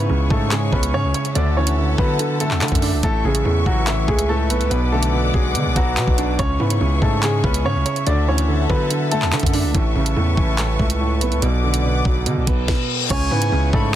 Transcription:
Already playing: felt piano C#3 E3, upright piano B3 B4, string section G#4 C#5 E5 C#6
0.09 808-style bass C#2, felt piano C#3
0.30 808-style bass G#2, felt piano G#3, upright piano A3 A4, kick
0.51 felt piano C#3, upright piano G#3 G#4, clap, closed hi-hat
0.72 808-style bass C#2, upright piano B3 B4, felt piano C#4, kick
0.83 closed hi-hat
0.93 808-style bass G#2, felt piano C#3, upright piano C#4 C#5
1.04 808-style bass C#2
1.14 felt piano C#5, closed hi-hat
1.25 closed hi-hat
1.35 808-style bass D2, felt piano D3, upright piano D4 D5, string section A4 F#5 A5, closed hi-hat
1.56 felt piano E3, upright piano C#4 C#5
1.67 closed hi-hat
1.77 felt piano D3
1.98 808-style bass D3, felt piano F#3, upright piano B3 B4, kick
2.19 felt piano D3, closed hi-hat
2.40 felt piano A3, upright piano A3 A4, closed hi-hat
2.51 808-style bass E2, clap
2.61 808-style bass D3, felt piano D3, clap, closed hi-hat
2.68 808-style bass F#2, kick, closed hi-hat
2.75 closed hi-hat
2.82 felt piano D4, open hi-hat
2.93 808-style bass C#2
3.03 808-style bass A1, felt piano A2, upright piano A3 A4, string section B4 C#6, kick, closed hi-hat
3.24 808-style bass A1, felt piano C#3, upright piano G#3 G#4
3.35 closed hi-hat
3.45 808-style bass E2, felt piano A2
3.66 808-style bass A1, felt piano E3, upright piano F#3 F#4, kick
3.87 felt piano A2, upright piano E3 E4, clap, closed hi-hat
4.08 808-style bass C#2, upright piano G#3 G#4, felt piano A3, kick
4.19 closed hi-hat
4.29 felt piano A2, upright piano A3 A4
4.50 808-style bass B1, felt piano B3, closed hi-hat
4.61 808-style bass C#2, closed hi-hat
4.70 808-style bass B1, felt piano B2, upright piano B3 B4, string section D5 F#5 D6, closed hi-hat
4.92 felt piano D3, upright piano A3 A4
5.03 closed hi-hat
5.13 felt piano B2
5.34 808-style bass B1, felt piano F#3, upright piano G#3 G#4, kick
5.55 felt piano B2, 808-style bass D3, closed hi-hat
5.66 808-style bass B1
5.76 808-style bass B1, upright piano F#3 F#4, felt piano B3, kick, closed hi-hat
5.97 808-style bass B2, felt piano B2, clap, closed hi-hat
6.07 808-style bass B1, kick
6.18 felt piano D4, closed hi-hat
6.39 808-style bass C#2, felt piano C#3, upright piano C#4 C#5, string section G#4 C#5 E5 C#6, kick, closed hi-hat
6.60 808-style bass G#2, felt piano E3, upright piano B3 B4
6.70 closed hi-hat
6.81 808-style bass C#2, felt piano C#3
7.02 808-style bass G#2, felt piano G#3, upright piano A3 A4, kick
7.23 felt piano C#3, upright piano G#3 G#4, clap, closed hi-hat
7.44 808-style bass C#2, upright piano B3 B4, felt piano C#4, kick
7.54 closed hi-hat
7.65 808-style bass G#2, felt piano C#3, upright piano C#4 C#5
7.75 808-style bass C#2
7.86 felt piano C#5, closed hi-hat
7.96 closed hi-hat
8.07 808-style bass D2, felt piano D3, upright piano D4 D5, string section A4 F#5 A5, closed hi-hat
8.28 felt piano E3, upright piano C#4 C#5
8.38 closed hi-hat
8.48 felt piano D3
8.69 808-style bass D3, felt piano F#3, upright piano B3 B4, kick
8.90 felt piano D3, closed hi-hat
9.11 felt piano A3, upright piano A3 A4, closed hi-hat
9.22 808-style bass E2, clap
9.32 808-style bass D3, felt piano D3, clap, closed hi-hat
9.40 808-style bass F#2, kick, closed hi-hat
9.46 closed hi-hat
9.53 felt piano D4, open hi-hat
9.64 808-style bass C#2
9.74 808-style bass A1, felt piano A2, string section B4 A5 C#6, kick, closed hi-hat
9.96 808-style bass A1, felt piano C#3
10.06 closed hi-hat
10.16 808-style bass E2, felt piano A2
10.37 808-style bass A1, felt piano E3, kick
10.58 felt piano A2, clap, closed hi-hat
10.79 808-style bass C#2, felt piano A3, kick
10.90 closed hi-hat
11.01 felt piano A2
11.21 808-style bass B1, felt piano B3, closed hi-hat
11.32 808-style bass C#2, closed hi-hat
11.42 808-style bass B1, felt piano B2, string section B4 D5 F#5 D6, closed hi-hat
11.63 felt piano D3
11.74 closed hi-hat
11.84 felt piano B2
12.05 808-style bass B1, felt piano F#3, kick
12.26 felt piano B2, 808-style bass D3, closed hi-hat, reverse cymbal
12.37 808-style bass B1
12.47 808-style bass B1, felt piano B3, kick, closed hi-hat
12.68 kick, snare
13.10 808-style bass C#2, felt piano C#3, upright piano C#4 C#5, string section G#4 C#5 E5 C#6, flute G#5, kick, closed hi-hat, crash
13.31 808-style bass G#2, felt piano E3, upright piano B3 B4
13.42 closed hi-hat
13.52 808-style bass C#2, felt piano C#3
13.73 808-style bass G#2, felt piano G#3, upright piano A3 A4, flute B5, kick

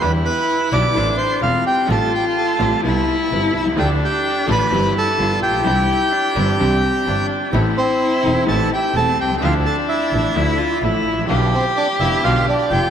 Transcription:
0.00 grand piano E2 D3 E3 G3 B3 E4, double bass E2, string section D4 E4 G4, cello E4, bandoneon B4 B5
0.25 bandoneon B4 B5
0.71 double bass B1, grand piano B1 B2 D3 G3 B3 E4, string section D4 E4 G4, bandoneon D5 D6
0.94 grand piano A1 A2 C3 E3 A3 E4, double bass A1, string section C4 E4 A4, cello D4
1.17 bandoneon C5 C6
1.41 grand piano E1 E2 C3 E3 A3 E4, double bass E1, cello C4, string section C4 E4 A4, bandoneon F4 F5
1.66 bandoneon G4 G5
1.87 grand piano A1 A2 C3 G3 A3 F4, double bass A1, string section A3 F4 G4, cello F4, bandoneon A4
1.92 bandoneon A5
2.15 bandoneon G4 G5
2.38 bandoneon A4 A5
2.59 grand piano A1 A2 C3 G3 A3 F4, double bass A1, string section A3 F4 G4
2.83 grand piano C2 C3 G3 B3 E4, double bass C2, string section C4 E4 B4, cello E4
3.31 double bass G1, grand piano G1 G2 C3 G3 B3 E4, string section C4 E4 B4
3.55 double bass C2, bandoneon E4 E5
3.59 grand piano B1
3.66 grand piano C2
3.71 grand piano C#2
3.76 grand piano D2 D3 F3 A3 F4, double bass D2, string section D4 F4 A4, cello D4, bandoneon G4 G5
4.04 bandoneon G4 G5
4.47 grand piano A1 A2 D3 F3 A3 F4, double bass A1, string section D4 F4 A4
4.52 bandoneon B4 B5
4.71 double bass G1, grand piano G1 G2 E3 G3 C4 G4, string section C4 E4 G4, cello E4
4.98 bandoneon A4 A5
5.18 double bass G1, grand piano G1 G2 F3 B3 D4 G4, string section B3 F4 G4, cello F4
5.42 double bass A#1, bandoneon G4 G5
5.48 grand piano A1
5.54 grand piano A#1
5.59 grand piano B1
5.63 grand piano C2 C3 E3 C4 D4 G4, double bass C2, string section C4 D4 E4, cello E4
6.11 cello D4
6.35 double bass G1, grand piano G1 G2 E3 C4 D4 G4, string section C4 D4 E4
6.58 double bass C2, grand piano C2 C3 E3 C4 D4 G4, string section C4 D4 E4, cello C4
7.06 double bass G1, grand piano G1 G2 E3 C4 D4 G4, string section C4 D4 E4, cello D4
7.53 double bass A1, grand piano A1 A2 E3 A3 C4 A4, string section A3 C4 E4, cello E4
7.77 bandoneon C4 C5
8.23 double bass E1, grand piano E1 E2 E3 A3 C4 A4, string section A3 C4 E4
8.46 grand piano A1 A2 E3 A3 C4 A4, double bass A1, string section A3 C4 E4, bandoneon A4 A5
8.73 bandoneon G4 G5
8.93 double bass E1, grand piano E1 E2 E3 A3 C4 A4, string section A3 C4 E4, cello C4, bandoneon A5
8.97 bandoneon A4
9.19 double bass C2, bandoneon G4 G5
9.24 grand piano B1
9.31 grand piano C2
9.37 grand piano C#2, cello D4, bandoneon G5
9.41 double bass D2, grand piano D2 D3 F3 A3 E4, string section F3 D4 E4, bandoneon F4 F5
9.65 bandoneon A4 A5
9.89 bandoneon E4 E5
10.11 double bass A1, grand piano A1 A2 D3 F3 A3 E4, string section F3 D4 E4
10.33 double bass D2, grand piano D2 D3 F3 A3 E4, string section F3 D4 E4, cello E4
10.58 cello F4
10.82 double bass A1, grand piano A1 A2 D3 F3 A3 E4, string section F3 D4 E4, cello E4
11.06 double bass A1
11.14 grand piano G#1
11.18 grand piano A1
11.24 grand piano A#1
11.28 double bass B1, grand piano B1 B2 D3 F3 B3 F4, string section B3 D4 F4, cello G4
11.54 bandoneon C4 C5
11.76 bandoneon D4 D5
11.99 double bass F1, grand piano F1 F2 D3 F3 B3 F4, string section B3 D4 F4, bandoneon E4 E5
12.22 double bass B1, grand piano B1 B2 D3 F3 B3 F4, string section B3 D4 F4, bandoneon F4 F5
12.49 bandoneon D4 D5
12.70 double bass F1, grand piano F1 F2 D3 F3 B3 F4, string section B3 D4 F4, cello F4, bandoneon G4 G5

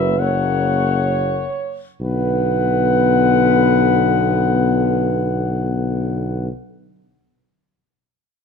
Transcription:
Already playing: tuba F#1, trombone F#3, euphonium A#3, french horn section B4, cornet E5
0.18 trombone C#3, euphonium A#3, french horn section C#5, cornet F#5
2.01 tuba B1, trombone D3, euphonium B3, french horn section B4, cornet F#5

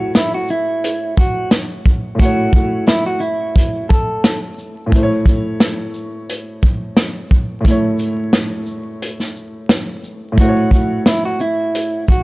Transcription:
Already playing: grand piano A2 A3 E4 C#5, clean electric guitar F#4
0.15 clean electric guitar E4, cross-stick, snare, closed hi-hat
0.34 clean electric guitar F#4
0.48 clean electric guitar E4, shaker
0.84 closed hi-hat
1.17 clean electric guitar F#4, kick, closed hi-hat, shaker
1.51 cross-stick, snare, closed hi-hat
1.85 kick, shaker
2.15 grand piano A2 A3
2.19 grand piano E4, clean electric guitar F#4, kick, closed hi-hat
2.25 grand piano C#5
2.53 kick, shaker
2.87 clean electric guitar E4, cross-stick, snare, closed hi-hat
3.06 clean electric guitar F#4
3.20 clean electric guitar E4, shaker
3.56 kick, closed hi-hat
3.89 clean electric guitar A4, kick, closed hi-hat, shaker
4.24 cross-stick, snare, closed hi-hat
4.59 shaker
4.86 grand piano A2 A3
4.92 grand piano E4, kick, closed hi-hat
4.96 grand piano C5
5.03 grand piano C#5
5.26 kick, closed hi-hat, shaker
5.60 cross-stick, snare, closed hi-hat
5.94 shaker
6.29 closed hi-hat
6.63 kick, closed hi-hat, shaker
6.97 cross-stick, snare, closed hi-hat
7.31 kick, shaker
7.61 grand piano A2 A3
7.65 grand piano E4, kick, closed hi-hat
7.71 grand piano C#5
7.99 closed hi-hat, shaker
8.33 cross-stick, snare, closed hi-hat
8.66 shaker
9.02 closed hi-hat
9.20 snare
9.35 shaker
9.69 cross-stick, snare, closed hi-hat
10.04 shaker
10.32 grand piano A2 A3
10.38 grand piano E4, clean electric guitar F#4, kick, closed hi-hat
10.42 grand piano C5
10.49 grand piano C#5
10.71 kick, closed hi-hat, shaker
11.06 clean electric guitar E4, cross-stick, snare, closed hi-hat
11.25 clean electric guitar F#4
11.39 clean electric guitar E4, shaker
11.75 closed hi-hat
12.08 clean electric guitar F#4, kick, closed hi-hat, shaker

